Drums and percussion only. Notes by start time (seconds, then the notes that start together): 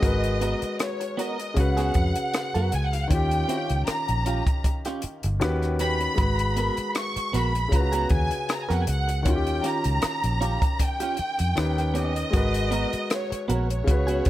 0.03 kick, closed hi-hat
0.24 closed hi-hat
0.41 closed hi-hat
0.62 closed hi-hat
0.79 cross-stick, closed hi-hat
1.01 closed hi-hat
1.19 closed hi-hat
1.39 closed hi-hat
1.57 kick, closed hi-hat
1.77 cross-stick, closed hi-hat
1.94 kick, closed hi-hat
2.15 closed hi-hat
2.34 cross-stick, closed hi-hat
2.55 closed hi-hat
2.72 closed hi-hat
2.93 closed hi-hat
3.11 kick, closed hi-hat
3.31 closed hi-hat
3.49 closed hi-hat
3.69 closed hi-hat
3.87 cross-stick, closed hi-hat
4.08 closed hi-hat
4.26 closed hi-hat
4.47 kick, closed hi-hat
4.64 kick, closed hi-hat
4.85 cross-stick, closed hi-hat
5.02 closed hi-hat
5.23 closed hi-hat
5.41 cross-stick, closed hi-hat
5.62 cross-stick, closed hi-hat
5.79 closed hi-hat
6.00 closed hi-hat
6.18 kick, closed hi-hat
6.39 closed hi-hat
6.57 closed hi-hat
6.77 closed hi-hat
6.95 cross-stick, closed hi-hat
7.16 closed hi-hat
7.34 closed hi-hat
7.55 closed hi-hat
7.72 kick, closed hi-hat
7.93 closed hi-hat
8.09 kick, closed hi-hat
8.31 closed hi-hat
8.49 cross-stick, closed hi-hat
8.70 cross-stick, closed hi-hat
8.87 closed hi-hat
9.09 closed hi-hat
9.26 kick, closed hi-hat
9.47 closed hi-hat
9.64 closed hi-hat
9.84 closed hi-hat
10.02 cross-stick, closed hi-hat
10.24 closed hi-hat
10.42 closed hi-hat
10.62 kick, closed hi-hat
10.79 kick, closed hi-hat
11.00 closed hi-hat
11.17 closed hi-hat
11.39 closed hi-hat
11.57 cross-stick, closed hi-hat
11.78 cross-stick, closed hi-hat
11.95 closed hi-hat
12.16 closed hi-hat
12.33 kick, closed hi-hat
12.54 closed hi-hat
12.72 closed hi-hat
12.93 closed hi-hat
13.10 cross-stick, closed hi-hat
13.32 closed hi-hat
13.50 closed hi-hat
13.70 closed hi-hat
13.88 kick, closed hi-hat
14.08 closed hi-hat
14.25 kick, closed hi-hat